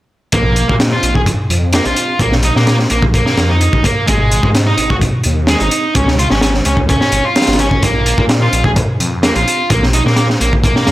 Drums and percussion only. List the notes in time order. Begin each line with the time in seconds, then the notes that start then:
0.32 kick, closed hi-hat
0.56 closed hi-hat
0.69 kick
0.80 snare, closed hi-hat
1.03 closed hi-hat
1.15 kick
1.26 kick, closed hi-hat
1.50 closed hi-hat
1.73 snare, closed hi-hat
1.85 closed hi-hat
1.96 closed hi-hat
2.19 kick, closed hi-hat
2.32 snare
2.43 closed hi-hat
2.56 snare
2.67 snare, closed hi-hat
2.79 snare
2.90 closed hi-hat
3.02 kick
3.14 kick, closed hi-hat
3.26 snare
3.37 snare, closed hi-hat
3.61 closed hi-hat
3.73 kick
3.84 kick, closed hi-hat
4.08 kick, closed hi-hat
4.31 closed hi-hat
4.43 kick
4.55 snare, closed hi-hat
4.78 closed hi-hat
4.90 kick
5.01 kick, closed hi-hat
5.24 closed hi-hat
5.47 snare, closed hi-hat
5.60 closed hi-hat
5.71 closed hi-hat
5.95 kick, closed hi-hat
6.08 snare
6.19 closed hi-hat
6.30 snare
6.41 snare, closed hi-hat
6.54 snare
6.65 closed hi-hat
6.77 kick
6.89 kick, closed hi-hat
7.01 snare
7.12 closed hi-hat
7.36 snare, closed hi-hat
7.42 snare, closed hi-hat
7.47 snare, closed hi-hat
7.53 snare, closed hi-hat
7.59 closed hi-hat
7.71 kick
7.83 kick, closed hi-hat
8.06 closed hi-hat
8.18 kick
8.29 snare, closed hi-hat
8.53 closed hi-hat
8.64 kick
8.76 kick, closed hi-hat
9.00 closed hi-hat
9.23 snare, closed hi-hat
9.36 closed hi-hat
9.48 closed hi-hat
9.70 kick, closed hi-hat
9.83 snare
9.93 closed hi-hat
10.07 snare
10.16 snare, closed hi-hat
10.30 snare
10.41 closed hi-hat
10.53 kick
10.64 kick, closed hi-hat
10.76 snare
10.87 snare, closed hi-hat